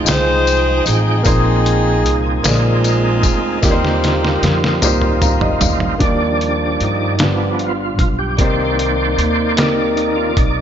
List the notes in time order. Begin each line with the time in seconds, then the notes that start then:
Already playing: C3 F3 G#3 D#4 F4 C5 G5
0.05 C2 G#3 D#4 F4 G#4 C5 G5, snare, closed hi-hat, tambourine
0.09 C5
0.47 closed hi-hat, tambourine
0.86 A1 C4 D#4 G#4, closed hi-hat, tambourine
1.23 A#1 A#2 A#3 C4 D#4 F4 G#4 C5, kick, closed hi-hat, tambourine
1.66 closed hi-hat
2.05 C2, closed hi-hat
2.43 A#1 G#3 A#3 C4 D#4 F4 G#4 D5, snare, closed hi-hat, tambourine
2.84 closed hi-hat, tambourine
3.23 D2, kick, closed hi-hat, tambourine
3.62 D#2 D#3 G3 A#3 C4 D#4 E4 F4 G4 A#4, kick, snare, closed hi-hat, tambourine
3.69 F4 C5
3.85 snare
4.04 snare, closed hi-hat
4.25 snare
4.42 F2, snare, closed hi-hat
4.64 snare
4.81 D#2 A#3 D#4 F4 G4 C5, closed hi-hat, mid tom, tambourine
5.01 mid tom
5.22 F5 A#5, closed hi-hat, mid tom, tambourine
5.41 D#5, floor tom
5.61 D2 F5, closed hi-hat, floor tom, tambourine
5.80 F5, floor tom
5.98 D#2 D#3 F3 G3 A#3 D4 D#4 G4 D5, kick, closed hi-hat
6.41 closed hi-hat
6.80 G2 D#4, closed hi-hat
7.19 G1 G2 F3 B3 D4 F4 G4 D5, snare, closed hi-hat
7.59 F4, closed hi-hat
7.99 B1 F4, kick, closed hi-hat
8.19 G4
8.37 C2 C3 D#3 A#3 C4 D#4 G4 C5 D5, kick, closed hi-hat
8.79 closed hi-hat
9.18 D#2, closed hi-hat
9.56 A#3 C4 D#4 G4 A#4, snare, closed hi-hat
9.96 D#3 A#3 D#4, closed hi-hat
10.16 F4
10.37 B1 D#4, kick, closed hi-hat